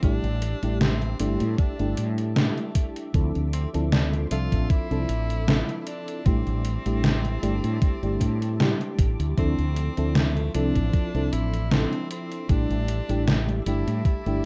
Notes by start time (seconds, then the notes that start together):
Already playing: E5 D6
0.02 A1 G3 A3 D4 E4 G4 A5, kick, closed hi-hat
0.23 A1, closed hi-hat
0.42 closed hi-hat
0.62 A1 G3 A3 D4 E4 G4, closed hi-hat
0.81 C4, snare, closed hi-hat
1.02 closed hi-hat
1.19 G1 G3 A3 C4 D4 E4 G4, closed hi-hat
1.40 A2, closed hi-hat
1.58 D4, kick, closed hi-hat
1.79 G1 G3 A3 D4 E4 G4, closed hi-hat
1.97 A2, closed hi-hat
2.18 closed hi-hat
2.36 G3 A3 D4 E4 G4, snare, closed hi-hat
2.58 closed hi-hat
2.75 kick, closed hi-hat
2.96 closed hi-hat
3.13 D2 F3 C4 D4 E4 A4 C6, kick, closed hi-hat
3.35 D2, closed hi-hat
3.53 C4, closed hi-hat
3.73 D2 F3 C4 D4 E4 A4, closed hi-hat
3.92 D4, snare, closed hi-hat
4.13 closed hi-hat
4.31 C2 F3 C4 D4 F4 A4 E5, closed hi-hat
4.52 A1, kick, closed hi-hat
4.70 E4, kick, closed hi-hat
4.90 C2 F3 C4 D4 E4 A4, closed hi-hat
5.09 A1, closed hi-hat
5.30 closed hi-hat
5.47 F3 C4 D4 E4 A4, snare, closed hi-hat
5.69 closed hi-hat
5.81 E4
5.87 D4, closed hi-hat
6.08 closed hi-hat
6.25 A1 G3 A3 C4 D4 E4 G4 A5, kick, closed hi-hat
6.47 A1, closed hi-hat
6.65 closed hi-hat
6.86 A1 G3 A3 D4 E4 G4, closed hi-hat
7.04 snare, closed hi-hat
7.25 closed hi-hat
7.42 G1 G3 A3 D4 E4 G4, closed hi-hat
7.64 A2, closed hi-hat
7.82 kick, closed hi-hat
8.02 G1 G3 A3 D4 E4 G4, closed hi-hat
8.21 A2, kick, closed hi-hat
8.42 closed hi-hat
8.59 G3 A3 D4 E4 G4, snare, closed hi-hat
8.81 closed hi-hat
8.99 A1, kick, closed hi-hat
9.20 D2, closed hi-hat
9.37 D2 F3 C4 D4 E4 A4 E5 C6, kick, closed hi-hat
9.59 D2, closed hi-hat
9.76 closed hi-hat
9.97 D2 F3 C4 D4 E4 A4, closed hi-hat
10.15 A3, snare, closed hi-hat
10.37 closed hi-hat
10.54 C2 F3 C4 D4 E4 A4, closed hi-hat
10.75 A1, kick, closed hi-hat
10.93 kick, closed hi-hat
11.14 C2 F3 C4 D4 E4 A4, closed hi-hat
11.33 A1 E4, closed hi-hat
11.54 closed hi-hat
11.71 F3 C4 D4 E4 A4, snare, closed hi-hat
11.93 closed hi-hat
12.11 C4, closed hi-hat
12.32 closed hi-hat
12.48 A1 G3 A3 D4 E4 G4 A5 D6, kick, closed hi-hat
12.70 A1, closed hi-hat
12.88 closed hi-hat
13.09 A1 G3 A3 D4 E4 G4, closed hi-hat
13.28 snare, closed hi-hat
13.49 closed hi-hat
13.66 G1 G3 A3 D4 E4 G4, closed hi-hat
13.87 A2, closed hi-hat
14.05 E4, kick, closed hi-hat
14.26 G1 G3 A3 D4 E4 G4, closed hi-hat